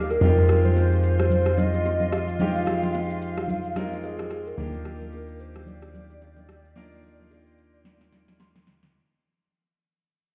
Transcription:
0.00 0.17 D#2 medium
0.00 0.17 A#3 medium
0.00 0.17 D4 medium
0.00 0.18 D#4 medium
0.00 0.18 F4 medium
0.00 0.12 G4 medium
0.00 0.18 A#4 medium
0.00 8.90 F5 medium
0.00 0.19 F6 medium
0.10 0.64 A#4 loud
0.10 shaker medium
0.21 4.54 F2 medium
0.21 2.35 G#3 medium
0.21 2.36 C4 medium
0.21 2.36 D#4 medium
0.21 4.54 F4 medium
0.21 2.36 F4 medium
0.21 2.36 G4 medium
0.21 4.54 C6 medium
0.21 low conga medium
0.21 shaker medium
0.37 shaker medium
0.48 cross-stick medium
0.48 low bongo medium
0.48 shaker medium
0.65 1.15 C5 loud
0.65 low bongo medium
0.65 shaker soft
0.76 high bongo medium
0.76 shaker medium
0.92 shaker medium
1.03 shaker medium
1.19 1.59 C5 medium
1.19 cross-stick medium
1.19 shaker soft
1.30 low conga medium
1.30 shaker medium
1.46 cross-stick medium
1.46 shaker soft
1.58 2.14 D#5 loud
1.58 high bongo medium
1.58 low bongo medium
1.58 low conga medium
1.58 shaker medium
1.73 high bongo soft
1.73 shaker medium
1.85 high bongo medium
1.85 shaker medium
2.00 low bongo medium
2.00 shaker soft
2.12 4.05 F5 loud
2.12 cross-stick medium
2.12 shaker medium
2.28 shaker soft
2.39 3.73 G#3 medium
2.39 3.73 C4 medium
2.39 3.74 D#4 medium
2.39 3.74 F4 medium
2.39 3.74 G4 medium
2.39 low conga medium
2.39 shaker medium
2.55 shaker medium
2.66 cross-stick medium
2.66 low bongo medium
2.66 shaker medium
2.82 low bongo medium
2.82 shaker soft
2.94 high bongo medium
2.94 shaker medium
3.10 shaker medium
3.22 shaker medium
3.37 cross-stick medium
3.37 shaker soft
3.48 low conga medium
3.48 shaker medium
3.64 shaker soft
3.76 4.58 G#3 medium
3.76 4.58 C4 medium
3.76 4.57 D#4 medium
3.76 4.58 F4 medium
3.76 4.58 A#4 medium
3.76 cross-stick medium
3.76 high bongo medium
3.76 low bongo medium
3.76 low conga medium
3.76 shaker medium
3.92 high bongo medium
3.92 shaker medium
4.03 4.48 G#4 medium
4.03 high bongo medium
4.03 shaker medium
4.18 cross-stick medium
4.18 low bongo medium
4.18 shaker soft
4.30 cross-stick medium
4.30 shaker medium
4.46 5.42 A#4 loud
4.46 shaker medium
4.57 8.90 D#2 medium
4.57 6.72 A#3 medium
4.57 6.72 D4 medium
4.57 6.72 D#4 medium
4.57 6.73 F4 medium
4.57 8.90 G4 medium
4.57 6.73 G4 medium
4.57 6.74 D6 medium
4.57 low conga medium
4.57 shaker medium
4.73 shaker soft
4.84 cross-stick medium
4.84 low bongo medium
4.84 shaker medium
5.01 low bongo medium
5.01 shaker soft
5.12 high bongo medium
5.12 shaker medium
5.28 shaker medium
5.40 5.69 C5 medium
5.40 shaker medium
5.55 cross-stick medium
5.55 shaker soft
5.66 8.40 D5 medium
5.66 low conga medium
5.66 shaker medium
5.82 cross-stick medium
5.82 shaker soft
5.94 high bongo soft
5.94 low bongo medium
5.94 low conga medium
5.94 shaker medium
6.10 high bongo soft
6.10 shaker medium
6.22 high bongo medium
6.22 shaker medium
6.36 low bongo medium
6.36 shaker soft
6.49 cross-stick medium
6.49 shaker medium
6.65 shaker soft
6.76 8.90 A#3 medium
6.76 8.90 D4 medium
6.76 8.90 D#4 medium
6.76 8.91 F4 medium
6.76 8.91 A#4 medium
6.76 8.92 C6 medium
6.76 low conga medium
6.76 shaker medium
6.92 shaker soft
7.03 low bongo soft
7.03 shaker medium
7.20 low bongo medium
7.31 high bongo medium
7.31 shaker medium
7.46 shaker medium
7.58 shaker medium
7.73 shaker soft
7.84 snare medium
7.84 low conga medium
7.84 shaker medium
8.01 snare soft
8.01 shaker soft
8.12 snare medium
8.12 high bongo medium
8.12 low bongo medium
8.12 low conga medium
8.12 shaker medium
8.28 snare medium
8.28 high bongo soft
8.28 shaker medium
8.40 8.91 C6 medium
8.40 snare medium
8.40 high bongo medium
8.55 snare medium
8.55 low bongo medium
8.67 snare medium
8.67 shaker medium
8.83 snare medium

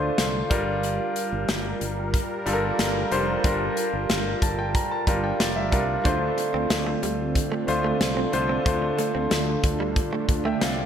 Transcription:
0.00 0.47 D3 medium
0.00 0.53 A3 medium
0.00 0.48 D4 medium
0.00 0.50 D4 medium
0.00 0.51 F4 medium
0.00 10.86 F4 medium
0.00 0.52 C5 medium
0.00 0.16 C6 medium
0.18 0.42 C2 medium
0.18 0.79 F5 medium
0.18 snare loud
0.18 closed hi-hat medium
0.50 0.98 G1 medium
0.50 1.55 G3 medium
0.50 6.01 G3 medium
0.50 1.55 D4 medium
0.50 1.55 F4 medium
0.50 6.01 A#4 medium
0.50 1.55 A#4 medium
0.50 kick medium
0.50 closed hi-hat medium
0.83 closed hi-hat medium
1.16 closed hi-hat medium
1.32 1.44 G1 medium
1.48 1.72 G1 medium
1.48 snare loud
1.48 closed hi-hat medium
1.81 2.16 G1 medium
1.81 closed hi-hat medium
2.14 kick medium
2.14 closed hi-hat medium
2.46 2.70 G1 medium
2.46 2.95 G3 medium
2.46 2.95 D4 medium
2.46 2.96 F4 medium
2.46 2.53 A4 medium
2.46 closed hi-hat medium
2.53 2.99 A#4 medium
2.79 3.02 G1 medium
2.79 snare loud
2.79 closed hi-hat medium
3.11 3.35 F1 medium
3.11 3.36 G3 medium
3.11 3.36 D4 medium
3.11 3.36 F4 medium
3.11 3.37 C5 medium
3.11 closed hi-hat medium
3.44 3.68 G1 medium
3.44 4.42 G3 medium
3.44 4.43 D4 medium
3.44 4.43 F4 medium
3.44 4.43 A#4 medium
3.44 kick loud
3.44 closed hi-hat medium
3.77 closed hi-hat medium
3.93 4.05 G1 medium
4.09 4.33 G1 medium
4.09 snare loud
4.09 closed hi-hat medium
4.42 4.77 G1 medium
4.42 4.57 A5 medium
4.42 kick medium
4.42 closed hi-hat medium
4.59 4.74 G5 medium
4.75 4.90 A#5 medium
4.75 kick medium
4.75 closed hi-hat medium
4.91 5.21 A5 medium
5.07 5.31 G1 medium
5.07 5.56 G3 medium
5.07 5.56 D4 medium
5.07 5.57 F4 medium
5.07 5.57 A#4 medium
5.07 kick medium
5.07 closed hi-hat medium
5.24 5.39 G5 medium
5.40 5.72 F1 medium
5.40 5.55 D5 medium
5.40 snare loud
5.40 closed hi-hat medium
5.56 6.01 E5 medium
5.72 5.96 C2 medium
5.72 5.97 G3 medium
5.72 5.97 D4 medium
5.72 5.97 F4 medium
5.72 5.97 A#4 medium
5.72 kick medium
5.72 closed hi-hat medium
6.04 6.29 D2 loud
6.04 10.86 D3 medium
6.04 7.03 A3 medium
6.04 8.63 C4 medium
6.04 7.03 D4 medium
6.04 6.17 D4 medium
6.04 7.03 F4 medium
6.04 7.04 C5 medium
6.04 kick medium
6.04 closed hi-hat medium
6.38 muted clean electric guitar stroke soft
6.38 closed hi-hat medium
6.54 6.66 D2 medium
6.54 6.66 C4 medium
6.70 6.94 D2 medium
6.70 muted clean electric guitar stroke soft
6.70 snare loud
6.70 closed hi-hat medium
6.87 6.99 A3 medium
7.03 7.38 D2 medium
7.03 7.15 G3 medium
7.03 closed hi-hat medium
7.35 kick medium
7.35 closed hi-hat medium
7.52 7.64 A3 medium
7.67 7.91 D2 medium
7.67 8.17 A3 medium
7.67 8.17 D4 medium
7.67 8.17 F4 medium
7.67 8.17 C5 medium
7.67 muted clean electric guitar stroke soft
7.67 closed hi-hat medium
7.84 7.97 A3 medium
8.00 8.24 C2 medium
8.00 snare loud
8.00 closed hi-hat medium
8.17 8.29 C4 medium
8.32 8.57 C2 medium
8.32 8.57 A3 medium
8.32 8.58 D4 medium
8.32 8.58 F4 medium
8.32 8.58 C5 medium
8.32 muted clean electric guitar stroke soft
8.32 closed hi-hat medium
8.49 8.62 C4 medium
8.65 8.89 D2 medium
8.65 9.64 A3 medium
8.65 9.64 D4 medium
8.65 10.86 D4 medium
8.65 9.64 F4 medium
8.65 9.64 C5 medium
8.65 kick medium
8.65 closed hi-hat medium
8.82 muted clean electric guitar stroke soft
8.98 9.11 A3 medium
8.98 closed hi-hat medium
9.15 9.27 D2 medium
9.15 9.27 C4 medium
9.31 9.55 D2 medium
9.31 9.44 A3 medium
9.31 snare loud
9.31 closed hi-hat medium
9.64 9.99 D2 medium
9.64 muted clean electric guitar stroke soft
9.64 kick medium
9.64 closed hi-hat medium
9.80 9.92 G3 medium
9.96 kick medium
9.96 closed hi-hat medium
10.13 10.25 A3 medium
10.29 10.52 D2 medium
10.29 muted clean electric guitar stroke soft
10.29 kick medium
10.29 closed hi-hat medium
10.45 10.58 A3 medium
10.45 10.61 E5 medium
10.45 10.61 G5 medium
10.61 10.85 C2 medium
10.61 10.74 C4 medium
10.61 10.76 D5 medium
10.61 10.77 F5 medium
10.61 snare loud
10.61 closed hi-hat medium
10.78 10.86 D5 medium

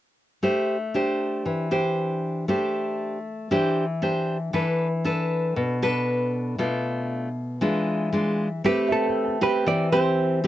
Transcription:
0.43 1.43 A3 medium
0.43 0.75 D4 soft
0.43 0.76 G4 soft
0.43 0.76 C5 medium
0.94 1.67 D4 soft
0.94 1.67 G4 medium
0.94 1.67 C5 medium
1.46 2.45 E3 medium
1.71 2.44 D4 medium
1.71 2.44 G4 medium
1.71 2.44 C5 medium
2.48 3.48 A3 medium
2.48 3.17 D4 medium
2.48 3.17 G4 soft
2.48 3.17 C5 medium
3.51 4.51 E3 medium
3.51 3.84 D4 medium
3.51 3.84 G4 medium
3.51 3.84 C5 medium
4.02 4.36 D4 medium
4.02 4.37 G4 soft
4.02 4.37 C5 medium
4.53 5.53 E3 medium
4.53 4.86 D4 soft
4.53 4.86 A4 medium
4.53 4.87 B4 medium
5.04 5.77 D4 medium
5.04 5.77 A4 medium
5.04 5.78 B4 medium
5.56 6.56 B2 medium
5.82 6.55 D4 medium
5.82 6.55 A4 medium
5.82 6.55 B4 medium
6.58 7.58 B2 medium
6.58 7.27 A3 medium
6.58 7.27 D4 soft
6.58 7.28 F4 medium
7.61 8.61 E3 medium
7.61 8.08 G#3 medium
7.61 8.08 D4 soft
7.61 8.08 F4 medium
8.12 8.47 G#3 medium
8.12 8.47 D4 medium
8.12 8.47 F4 medium
8.64 9.64 A3 medium
8.64 9.36 C4 medium
8.64 9.37 G4 soft
8.64 8.91 G4 medium
8.64 9.37 B4 medium
8.89 9.43 A4 medium
8.89 10.47 E5 soft
9.07 10.47 G5 soft
9.25 10.47 A5 soft
9.41 9.88 C4 medium
9.41 9.88 G4 medium
9.41 9.88 B4 medium
9.41 9.67 B4 medium
9.66 10.47 E3 medium
9.66 9.92 D5 medium
9.92 10.39 C4 medium
9.92 10.39 G4 medium
9.92 10.47 C5 loud
10.44 10.47 C4 medium
10.44 10.47 G4 medium

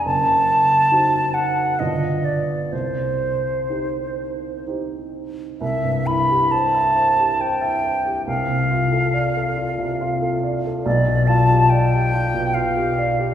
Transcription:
0.05 0.89 F#1 soft
0.05 1.36 A5 medium
0.92 1.76 D#4 soft
0.92 1.76 F#4 soft
0.92 1.76 C5 soft
1.34 1.81 F#5 medium
1.79 2.70 G1 soft
1.79 2.68 D4 soft
1.79 2.69 F4 soft
1.79 2.69 B4 soft
1.79 2.26 D#5 medium
2.24 2.74 D5 soft
2.72 3.67 C2 soft
2.72 4.67 C5 medium
3.70 4.63 D#4 soft
3.70 4.63 G4 soft
3.70 4.63 C5 soft
4.67 5.57 D#4 soft
4.67 5.57 G4 soft
4.67 5.57 C5 soft
5.61 8.23 C2 medium
5.61 6.08 E5 medium
5.84 6.20 G2 soft
6.07 6.44 E4 soft
6.07 6.53 B5 medium
6.30 6.66 G4 soft
6.51 6.88 C5 soft
6.51 7.43 A5 medium
6.74 7.10 E5 soft
6.96 7.31 C5 soft
7.18 7.53 G4 soft
7.40 7.75 C5 soft
7.40 8.26 G5 medium
7.61 7.97 E5 soft
7.84 8.19 C5 soft
8.05 8.27 G4 soft
8.27 10.81 C2 medium
8.27 10.38 F5 medium
8.49 8.83 C3 soft
8.71 9.05 F4 soft
8.92 9.26 A4 soft
9.14 9.48 D5 soft
9.36 9.70 A4 soft
9.57 9.91 F4 soft
9.78 10.13 C3 soft
10.01 10.35 F4 medium
10.21 10.55 A4 soft
10.43 10.77 D5 soft
10.65 10.86 A4 soft
10.84 13.34 B1 medium
10.84 11.29 D5 medium
11.08 11.41 B2 soft
11.27 11.62 F4 medium
11.27 11.71 A5 medium
11.50 11.83 G4 soft
11.70 12.05 D5 medium
11.70 12.56 G5 medium
11.93 12.26 G4 soft
12.14 12.47 F4 soft
12.34 12.68 B2 soft
12.54 12.89 F4 soft
12.54 13.34 F5 medium
12.77 13.10 G4 medium
12.98 13.31 D5 medium
13.18 13.34 G4 medium

